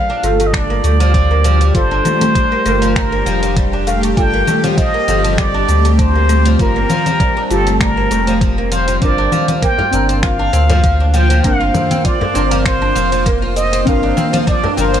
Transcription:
Already playing: G3 A#3 D4 F4 G4 A4 F5
0.10 D4
0.23 G1 A3 F4 A4, closed hi-hat, cabasa
0.40 A3, closed hi-hat, cabasa
0.47 D#5
0.53 D4 D5, finger snap, kick, closed hi-hat, cabasa
0.70 A#3
0.84 D2 A3, closed hi-hat, cabasa
1.00 F3, closed hi-hat, cabasa
1.14 F3, kick, closed hi-hat, cabasa
1.31 A#3
1.44 F3, closed hi-hat, cabasa
1.61 F3, closed hi-hat, cabasa
1.74 G1 G3 F4 A4 C5, kick, closed hi-hat, cabasa
1.91 D4
2.05 A3, closed hi-hat, low conga, cabasa
2.21 A3, closed hi-hat, low conga, cabasa
2.35 D4, kick, closed hi-hat, cabasa
2.52 A#3
2.65 G1 A3 F4 A#4, closed hi-hat, cabasa
2.82 F3, closed hi-hat, cabasa
2.96 F3 A#4, finger snap, kick, closed hi-hat, cabasa
3.12 A#3
3.26 F1 F3, closed hi-hat, cabasa
3.43 F3, closed hi-hat, cabasa
3.57 G3, kick, closed hi-hat, cabasa
3.73 D4
3.87 A3 F5, closed hi-hat, cabasa
4.03 A3, closed hi-hat, cabasa
4.17 G1 C4 D4 F4 A4 G5, kick, closed hi-hat, cabasa
4.34 A#3
4.47 A3, low conga, cabasa
4.64 F3, closed hi-hat, low conga, cabasa
4.78 F3 D#5, kick, closed hi-hat, cabasa
4.94 A#3
5.08 G1 F3 F4 A4, closed hi-hat, cabasa
5.24 F3, closed hi-hat, cabasa
5.38 G3 D5, finger snap, kick, closed hi-hat, cabasa
5.54 D4
5.68 D2 A3, closed hi-hat, cabasa
5.85 A3, closed hi-hat, cabasa
5.99 D4 C5, kick, closed hi-hat, cabasa
6.15 A#3
6.29 A3, closed hi-hat, cabasa
6.46 F3, closed hi-hat, cabasa
6.59 G1 F3 F4 A#4, kick, closed hi-hat, cabasa
6.76 A#3
6.90 F3, closed hi-hat, low conga, cabasa
7.06 F3, closed hi-hat, low conga, cabasa
7.20 G3, kick, closed hi-hat, cabasa
7.37 D4
7.50 G1 A3 F4 G4 A4, closed hi-hat, cabasa
7.67 A3, closed hi-hat, cabasa
7.80 D4 A#4, finger snap, kick, closed hi-hat, cabasa
7.97 A#3
8.11 F1 A3, closed hi-hat, cabasa
8.27 F3, closed hi-hat, cabasa
8.41 F3, kick, closed hi-hat, cabasa
8.58 A#3
8.71 F3 C5, closed hi-hat, cabasa
8.88 F3, closed hi-hat, cabasa
9.00 G1 F3 A#3 C4 D4 F4 C5 D5, kick, closed hi-hat, cabasa
9.04 A#4
9.18 D4
9.32 F3, low conga, cabasa
9.48 F3, closed hi-hat, low conga, cabasa
9.62 A#3 G5, kick, closed hi-hat, cabasa
9.78 F4, frame drum
9.91 G1 C4 D4, closed hi-hat, cabasa
9.95 A#4
10.09 C4, closed hi-hat, cabasa
10.23 F4 F5, finger snap, kick, closed hi-hat, cabasa
10.39 D4
10.53 D2 C4, closed hi-hat, cabasa
10.70 F3, closed hi-hat, frame drum, cabasa
10.84 F3, kick, closed hi-hat, cabasa
11.00 D4
11.14 F3 G5, closed hi-hat, cabasa
11.30 F3, closed hi-hat, cabasa
11.42 G1 A#3 C4 D4 A#4 F5, kick, closed hi-hat, cabasa
11.61 F4
11.74 C4, closed hi-hat, frame drum, low conga, cabasa
11.91 C4, closed hi-hat, low conga, cabasa
12.05 F4 D5, kick, closed hi-hat, cabasa
12.21 D4, frame drum
12.33 G1 C4 D4 A#4, closed hi-hat, cabasa
12.51 F3, closed hi-hat, cabasa
12.65 F3 C5, finger snap, kick, closed hi-hat, cabasa
12.82 D4
12.96 F1 F3, closed hi-hat, cabasa
13.12 F3, closed hi-hat, cabasa
13.26 A#3, kick, closed hi-hat, cabasa
13.42 F4
13.56 C4 D#5, closed hi-hat, cabasa
13.73 C4, closed hi-hat, cabasa
13.85 G1 C4 D4 F4 F5, kick, closed hi-hat, cabasa
13.89 A#4
14.03 D4
14.17 C4, low conga, cabasa
14.33 F3, closed hi-hat, low conga, cabasa
14.47 F3 D5, kick, closed hi-hat, cabasa
14.63 D4, frame drum
14.76 G1 F3 C4 D4 C5, closed hi-hat, cabasa
14.80 A#4
14.94 F3, closed hi-hat, cabasa

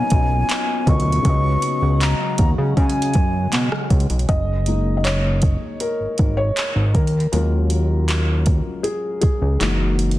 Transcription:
Already playing: B2 F#3 A#3 B3 C#4 D#4 F4 A#4 D#5 G#5
0.10 B1, kick, closed hi-hat
0.49 clap, closed hi-hat
0.86 D2 B2 F#3 C#4 F4 A#4 D#5 C#6, kick, closed hi-hat
1.00 closed hi-hat
1.12 closed hi-hat
1.22 C#2 C#3 F#3 G#3 C#4 F#4, kick, closed hi-hat
1.27 B4 D#5
1.62 closed hi-hat
1.82 C#2
2.01 A#5, clap, closed hi-hat
2.38 D#2, kick, closed hi-hat
2.58 C#3
2.77 C#3 G#5, kick, closed hi-hat
2.90 closed hi-hat
3.02 closed hi-hat
3.14 F#2, kick, closed hi-hat
3.52 B2, clap, closed hi-hat
3.72 cross-stick
3.90 C#2, kick, closed hi-hat
4.00 closed hi-hat
4.10 B1, closed hi-hat
4.19 closed hi-hat
4.29 F#1 D#5, kick, closed hi-hat
4.66 G#3 A#3 D#4, closed hi-hat
4.97 D#5
5.04 C#5, clap, closed hi-hat
5.42 kick, closed hi-hat
5.80 A#4, closed hi-hat
6.00 G#1
6.18 G#1, kick, closed hi-hat
6.37 C#5
6.57 clap, closed hi-hat
6.76 G#1
6.94 D#2 A#4, kick, closed hi-hat
7.07 closed hi-hat
7.20 closed hi-hat
7.32 D#2 F#3 G#3 C#4 F4 A#4, closed hi-hat
7.70 closed hi-hat
8.08 clap, closed hi-hat
8.46 kick, closed hi-hat
8.83 G#4, closed hi-hat
9.21 C#2 G#4, kick, closed hi-hat
9.42 C#2
9.59 F#1 E3 G#3 A#3 D#4 F#4, clap, closed hi-hat
9.99 closed hi-hat
10.11 closed hi-hat

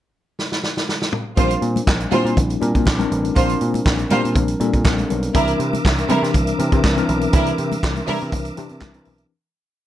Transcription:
0.39 snare
0.52 snare
0.63 snare
0.77 snare
0.89 snare
1.02 snare
1.12 mid tom
1.37 A#1 G3 C4 D4 F4 A#4 C5, kick, closed hi-hat, muted conga
1.50 closed hi-hat, muted conga
1.62 A#2, closed hi-hat
1.76 closed hi-hat, high conga
1.87 A#1, kick, snare, clap, muted conga
2.00 closed hi-hat
2.11 A#2 G3 C4 D4 E4 F4 C5, closed hi-hat, low conga
2.25 A#2, closed hi-hat
2.37 A#1, kick, closed hi-hat, low conga
2.50 closed hi-hat, muted conga
2.60 A#2 G3 C4 D4 A#4, closed hi-hat, high conga
2.75 A#2, kick, closed hi-hat
2.85 A#1, kick, snare, clap, muted conga, high conga
2.98 G3 C4 D4 A#4, closed hi-hat, high conga
3.12 A1, closed hi-hat, low conga
3.25 closed hi-hat
3.35 A#1 G3 C4 D4 F4 A#4 C5, kick, closed hi-hat, muted conga
3.49 closed hi-hat, muted conga
3.61 A#2, closed hi-hat
3.74 closed hi-hat, high conga
3.86 A#1, kick, snare, clap
3.99 closed hi-hat, muted conga
4.10 A#2 G3 C4 D4 F4 A#4 C5, closed hi-hat, low conga
4.25 A#2, closed hi-hat
4.35 A#1, kick, closed hi-hat, low conga
4.48 closed hi-hat
4.60 A#2 G3 C4 D4 A4, closed hi-hat, high conga
4.73 A#2, kick, closed hi-hat
4.84 A#1 F5, kick, snare, clap, muted conga, high conga
4.98 closed hi-hat, high conga
5.10 B1 A#4, closed hi-hat, low conga
5.23 closed hi-hat
5.34 C2 D3 G3 C4 D4 E4 A#4 E5 D6, kick, closed hi-hat
5.40 E3
5.48 closed hi-hat
5.60 C3, closed hi-hat
5.73 closed hi-hat, high conga
5.85 C2, kick, snare, clap, muted conga
5.98 closed hi-hat, muted conga
6.09 C3 E3 G3 C4 D4 E4 A#4, closed hi-hat, low conga
6.22 C3, snare, closed hi-hat
6.34 C2, kick, closed hi-hat, muted conga, low conga
6.47 closed hi-hat
6.59 C3 E3 C4 D4 A#4, closed hi-hat, high conga
6.72 C3, kick, closed hi-hat
6.84 C2, kick, snare, clap, high conga
6.97 E3 C4 D4 A#4, closed hi-hat, high conga
7.09 B1, closed hi-hat, low conga
7.21 closed hi-hat
7.32 C2 E3 G3 C4 D4 E4 A4 A#4, kick, closed hi-hat, muted conga
7.40 A#4
7.46 closed hi-hat
7.58 C3, closed hi-hat
7.72 closed hi-hat, high conga
7.83 C2, kick, snare, clap, muted conga
7.96 closed hi-hat, muted conga, high conga
8.07 C3 E3 G3 C4 D4 E4 A#4, open hi-hat, low conga
8.21 C3, closed hi-hat
8.32 C2, kick, closed hi-hat, low conga
8.45 closed hi-hat
8.57 C3 E3 C4 D4 G4, closed hi-hat, high conga
8.69 C3, closed hi-hat
8.81 C2, kick, snare, clap, muted conga, high conga
8.94 E3 C4 D4 A#4, closed hi-hat, high conga
9.05 B1, open hi-hat, low conga
9.18 closed hi-hat

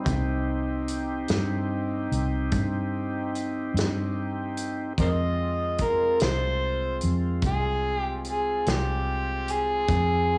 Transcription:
0.04 C2 C4 D#4 G4, kick, closed hi-hat
0.88 closed hi-hat
1.28 G2, snare, closed hi-hat
2.12 C2, closed hi-hat
2.52 G2, kick, closed hi-hat
3.35 closed hi-hat
3.74 G2, closed hi-hat
3.79 snare
4.57 closed hi-hat
4.98 F2 G#3 C4 F4 A#4 C5 D#5, kick, closed hi-hat
5.78 kick, closed hi-hat
5.84 A#4
6.20 C2 C5, snare, closed hi-hat
7.01 F2, closed hi-hat
7.42 C2, kick, closed hi-hat
7.47 G#4
7.99 G4
8.25 closed hi-hat
8.29 G#4
8.66 C2 G4, snare, closed hi-hat
9.48 closed hi-hat
9.52 G#4
9.88 F2 C4 F4 G#4, kick, closed hi-hat

